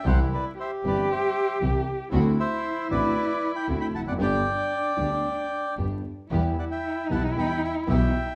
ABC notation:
X:1
M:4/4
L:1/16
Q:1/4=116
K:G
V:1 name="Bandoneon"
[cf]2 [Bd]2 [ce]2 [Bd]2 [ce]4 z4 | z2 [ce]4 [Bd]4- [Bd] [gb]2 [gb] [fa] [df] | [dg]12 z4 | [K:Em] z2 [df] [eg]3 [fa]2 [gb]2 [eg]2 [eg]4 |]
V:2 name="Cello"
E4 G12 | E16 | D12- D2 z2 | [K:Em] E16 |]
V:3 name="String section"
[CEG]2 z4 [CEG]2 z4 [CEG]2 z2 | [CDF]2 z4 [CDF]2 z4 [CDF]2 z2 | [B,DG]2 z4 [B,DG]2 z4 [B,DG]2 z2 | [K:Em] [B,EG]2 z4 [B,EG]2 [B,EG]2 z2 [B,EG]2 z2 |]
V:4 name="Grand piano" clef=bass
[C,,C,E,G,CG]2 z4 [G,,,G,,E,G,CG]2 z4 [C,,C,E,G,CG]2 z2 | [D,,D,A,CF]2 z4 [A,,,A,,D,A,CF]2 z4 [D,,D,A,CF]2 z/2 E,,/2 =F,,/2 ^F,,/2 | [G,,,G,,D,G,B,G]2 z4 [D,,D,G,B,G]2 z4 [G,,,G,,D,G,B,G]2 z2 | [K:Em] [E,,E,G,B,G]2 z4 [B,,,B,,E,G,B,G]2 [E,,E,G,B,G]2 z2 [B,,,B,,E,G,B,G]2 z2 |]
V:5 name="Double bass" clef=bass
C,,2 z4 G,,,2 z4 C,,2 z2 | D,,2 z4 A,,,2 z4 D,,2 =F,,,2 | G,,,2 z4 D,,2 z4 G,,,2 z2 | [K:Em] E,,2 z4 B,,,2 E,,2 z2 B,,,2 z2 |]